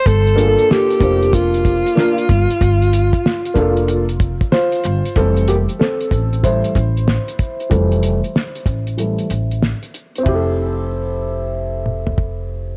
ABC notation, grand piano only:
X:1
M:4/4
L:1/8
Q:"Swing 16ths" 1/4=94
K:F
V:1 name="Grand piano"
z [B,DF_A=A]2 [B,DFc]3 [B,DFB] z | z3 [B,DFA] z2 [Fc]2 | [CA] [B,G] [CA]2 [Ec]4- | [Ec]6 z2 |
[CEGA]8 |]
V:2 name="Grand piano" clef=bass
z8 | z8 | [E,G,A,] z3 [E,G,A,] z3 | [E,G,A,] z3 [E,G,A,] z3 |
z8 |]